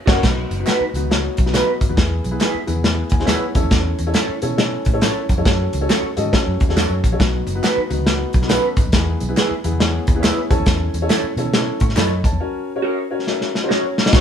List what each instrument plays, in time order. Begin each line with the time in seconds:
0.06 fingered electric bass F#1, horn section C#3 A#3 F#4, upright piano C#4 F#4 A#4 C#5 F#5, clean electric guitar F#4 A#4 C#5, kick, snare, crash
0.23 fingered electric bass B1, upright piano B3 D#4 F#4 B4, kick, snare, closed hi-hat, tambourine
0.50 fingered electric bass F#1, closed hi-hat, tambourine, muted conga
0.60 upright piano B3 D#4 F#4 B4
0.66 clean electric guitar D#4 F#4 B4, snare, clap, closed hi-hat, tambourine, high conga
0.80 muted fingered electric bass stroke
0.94 fingered electric bass C#2, upright piano B3 D#4 F#4 B4, closed hi-hat, tambourine, muted conga
1.03 low conga
1.10 upright piano B3 D#4 F#4 C#5, snare, closed hi-hat, muted conga
1.37 fingered electric bass B1, kick, closed hi-hat, tambourine, low conga
1.46 upright piano B3 D#4 F#4 B4, snare
1.54 clean electric guitar D#4 F#4 B4, snare, clap, closed hi-hat, tambourine, high conga
1.81 fingered electric bass G#1, kick, closed hi-hat, tambourine
1.89 fingered electric bass D#2, upright piano B3 D#4 F#4 B4, high conga
1.96 fingered electric bass E2, upright piano B3 E4 G#4 B4, kick, snare, closed hi-hat, tambourine
2.24 fingered electric bass B1, closed hi-hat, tambourine, muted conga
2.31 upright piano B3 E4 G#4 B4
2.40 clean electric guitar E4 G#4 B4, snare, clap, closed hi-hat, tambourine, high conga
2.55 muted fingered electric bass stroke
2.67 fingered electric bass E2, upright piano B3 E4 G#4 B4, closed hi-hat, tambourine, muted conga
2.76 low conga
2.84 upright piano B3 E4 G#4 B4, snare, closed hi-hat, tambourine, muted conga
3.10 fingered electric bass D#2, upright piano G#5, kick, closed hi-hat, low conga
3.19 upright piano B3 E4 G#4 C5, snare
3.25 clean electric guitar E4 G#4, upright piano C#5 F#5, snare, closed hi-hat, high conga
3.29 clean electric guitar B4, clap, tambourine
3.55 fingered electric bass E2, upright piano C#4 E4 A4 C#5 E5, kick, closed hi-hat, tambourine
3.63 fingered electric bass D#2, high conga
3.71 fingered electric bass E2, kick, snare, closed hi-hat, tambourine, muted conga
3.99 fingered electric bass E2, closed hi-hat, tambourine, muted conga
4.07 upright piano C#4 E4 A4 C#5
4.14 clean electric guitar E4 A4 C#5, snare, clap, closed hi-hat, tambourine, high conga
4.29 muted fingered electric bass stroke
4.42 fingered electric bass B2, upright piano C#4 E4 A4 C#5, closed hi-hat, tambourine, muted conga
4.50 low conga
4.57 upright piano C#4 E4 A4 C#5, snare, closed hi-hat, tambourine, muted conga
4.85 fingered electric bass A2, kick, closed hi-hat, low conga
4.94 upright piano C#4 E4 A4 C#5
5.01 clean electric guitar E4 A4 C#5, snare, clap, closed hi-hat, tambourine, high conga
5.29 fingered electric bass F#2, kick, closed hi-hat, tambourine
5.38 fingered electric bass F2, upright piano C#4 E4 A4 C#5, high conga
5.45 fingered electric bass F#2, upright piano C#4 F#4 A4 C#5, kick, snare, closed hi-hat, tambourine
5.73 fingered electric bass C#2, closed hi-hat, tambourine, muted conga
5.81 upright piano C#4 F#4 A4 C#5
5.89 clean electric guitar F#4 A4 C#5, snare, clap, closed hi-hat, tambourine, high conga
6.03 muted fingered electric bass stroke
6.16 fingered electric bass G#2, upright piano C#4 F#4 A4 D#5, closed hi-hat, tambourine, muted conga
6.25 low conga
6.32 upright piano C#4 F#4 A4 C#5, kick, snare, closed hi-hat, tambourine, muted conga
6.47 fingered electric bass F#2
6.60 fingered electric bass D#2, kick, closed hi-hat, tambourine, low conga
6.68 fingered electric bass E2, upright piano C#4 F#4 A4 C#5, snare
6.76 clean electric guitar F#4 A4 C#5, snare, clap, closed hi-hat, tambourine, high conga
6.90 fingered electric bass F#2
7.04 fingered electric bass A#1, kick, closed hi-hat, tambourine
7.12 upright piano C#4 F#4 A4 C#5, high conga
7.19 fingered electric bass B1, upright piano B3 D#4 F#4 B4, kick, snare, closed hi-hat, tambourine
7.47 fingered electric bass F#1, closed hi-hat, tambourine, muted conga
7.55 upright piano B3 D#4 F#4 B4
7.63 clean electric guitar D#4 F#4 B4, snare, clap, closed hi-hat, tambourine, high conga
7.77 muted fingered electric bass stroke
7.90 fingered electric bass C#2, upright piano B3 D#4 F#4 B4, closed hi-hat, tambourine, muted conga
7.98 low conga
8.06 upright piano B3 D#4 F#4 B4, snare, closed hi-hat, tambourine, muted conga
8.33 fingered electric bass B1, kick, closed hi-hat, tambourine, low conga
8.42 upright piano B3 D#4 F#4 A#4, snare
8.47 upright piano C#4 A4 B4, clean electric guitar D#4 F#4 B4, snare, clap, closed hi-hat, tambourine, high conga
8.77 fingered electric bass G#1, upright piano D#4 B4, kick, closed hi-hat, tambourine
8.86 fingered electric bass D#2, high conga
8.92 fingered electric bass E2, upright piano B3 E4 G#4 B4, kick, snare, closed hi-hat, tambourine
9.20 fingered electric bass B1, closed hi-hat, tambourine, muted conga
9.28 upright piano B3 E4 G#4 B4
9.37 clean electric guitar E4 G#4 B4, snare, clap, closed hi-hat, tambourine, high conga
9.51 muted fingered electric bass stroke
9.64 fingered electric bass E2, upright piano B3 E4 G#4 B4, closed hi-hat, tambourine, muted conga
9.72 low conga
9.79 upright piano B3 E4 G#4 C#5, snare, closed hi-hat, tambourine, muted conga
10.07 fingered electric bass D#2, kick, closed hi-hat, tambourine, low conga
10.14 upright piano B3 E4 G#4 B4
10.20 clean electric guitar E4 G#4, upright piano C#5 E5, closed hi-hat, high conga
10.24 clean electric guitar B4, snare, clap, tambourine
10.50 fingered electric bass E2, upright piano C#4 E4 A4 C#5 A5, kick, closed hi-hat, tambourine
10.59 fingered electric bass D#2, high conga
10.66 fingered electric bass E2, kick, snare, closed hi-hat, tambourine
10.94 fingered electric bass E2, closed hi-hat, tambourine, muted conga
11.02 upright piano C#4 E4 A4 C#5
11.09 clean electric guitar E4 A4 C#5, snare, clap, closed hi-hat, tambourine, high conga
11.23 muted fingered electric bass stroke
11.36 fingered electric bass B2, upright piano C#4 E4 A4 C#5, closed hi-hat, tambourine, muted conga
11.45 low conga
11.53 upright piano C#4 E4 A4 C#5, snare, closed hi-hat, muted conga
11.80 fingered electric bass A2, upright piano E5 C#6, kick, closed hi-hat, tambourine, low conga
11.89 snare
11.96 fingered electric bass F#2, clean electric guitar E4 A4 C#5, upright piano D#5 B5, snare, clap, closed hi-hat, tambourine, high conga
12.24 upright piano C#5 A5, kick, closed hi-hat, tambourine
12.32 fingered electric bass E2, high conga
12.40 upright piano C#4 F#4 A#4 C#5
12.76 upright piano C#4 F#4 A#4 C#5
12.82 clean electric guitar F#4 A#4 C#5
13.11 upright piano C#4 F#4 A#4 C#5
13.27 upright piano C#4 F#4 A#4 E5, snare
13.41 snare
13.55 snare
13.63 upright piano C#4 F#4 A#4 C5
13.69 clean electric guitar F#4 A#4 C#5, upright piano C#5, snare
13.98 snare
14.06 upright piano C#4 F#4 A#4 D#5, snare
14.13 fingered electric bass B1, horn section F#3 D#4 C#5, upright piano F#3 B3 D#4 F#4 B4, kick, snare, crash, tambourine